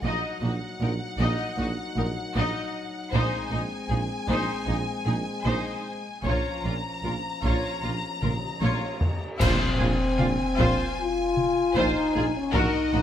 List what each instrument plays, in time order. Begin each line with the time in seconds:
0.03 double bass section A#1, tuba A#1, cello section A#2, french horn section F#3 D#4, viola section D#4, violin section D#5 F#5
0.42 double bass section A#1, tuba A#1, cello section A#2, viola section D#4, violin section F#4
0.80 double bass section A#1, tuba A#1, cello section A#2, viola section D#4, violin section A#4
1.19 double bass section A#1, tuba A#1, cello section A#2, viola section D#4, violin section D#5
1.57 double bass section A#1, tuba A#1, cello section A#2, viola section D#4, violin section F#4
1.96 double bass section A#1, tuba A#1, cello section A#2, viola section D#4, violin section A#4
2.35 double bass section A#1, tuba A#1, cello section A#2, viola section D#4, violin section D#5
3.13 double bass section A#1, tuba A#1, cello section A#2, french horn section G#3 C4, viola section D#4, violin section C5 G#5, taiko
3.52 double bass section A#1, tuba A#1, cello section A#2, viola section D#4, violin section D#4
3.89 double bass section A#1, tuba A#1, cello section A#2, viola section D#4, violin section G#4
4.28 double bass section A#1, tuba A#1, cello section A#2, viola section D#4, violin section C5, taiko
4.66 tuba A#1, double bass section A#1, cello section A#2, violin section D#4, viola section D#4
5.05 double bass section A#1, tuba A#1, cello section A#2, viola section D#4, violin section G#4
5.44 tuba A#1, double bass section A#1, cello section A#2, viola section D#4, violin section C5
6.24 double bass section A#1, tuba A#1, cello section A#2, french horn section F3 C#4, viola section F4, violin section C#5 A#5, taiko
6.63 tuba A#1, double bass section A#1, cello section A#2, violin section F4, viola section F4
7.04 double bass section A#1, tuba A#1, cello section A#2, viola section F4, violin section A#4
7.43 double bass section A#1, tuba A#1, cello section A#2, viola section F4, violin section C#5, taiko
7.83 double bass section A#1, tuba A#1, cello section A#2, violin section F4, viola section F4
8.22 double bass section A#1, tuba A#1, cello section A#2, viola section F4, violin section A#4, taiko mid
8.61 double bass section A#1, tuba A#1, cello section A#2, viola section F4, violin section C#5, taiko high
9.01 taiko low
9.40 double bass section A#1, tuba A#1, timpani A#2, cello section A#2, french horn section C4, viola section F4, violin section C5 G#5, concert bass drum, taiko, crash
9.78 tuba A#1, double bass section A#1, cello section A#2, viola section F4, violin section G#4
10.18 tuba A#1, double bass section A#1, cello section A#2, violin section F4, viola section F4, taiko mid
10.57 tuba A#1, double bass section A#1, cello section A#2, viola section F4, violin section C5, taiko
11.00 french horn section F4
11.37 taiko mid
11.74 tuba A#1, double bass section A#1, cello section A#2, french horn section D#4, viola section F4, violin section C5, taiko
12.14 tuba A#1, double bass section A#1, cello section A#2, viola section F4, violin section G#4
12.37 french horn section C#4
12.53 tuba A#1, double bass section A#1, cello section A#2, french horn section D#4, viola section F#4, violin section A#4 D#5, taiko
12.93 tuba A#1, double bass section A#1, cello section A#2, violin section F#4, viola section F#4